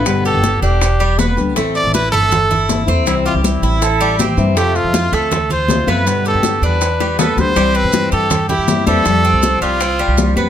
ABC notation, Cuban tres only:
X:1
M:4/4
L:1/8
Q:1/4=160
K:C
V:1 name="Cuban tres"
B, G2 D2 G, B,2 | A,2 E A,2 E2 C- | C G2 E2 G, C2 | A,2 F A,2 F2 B,- |
B, G2 D2 G, B,2 | G, C2 G2 E2 G,- | G, C2 G, C G,2 B, |]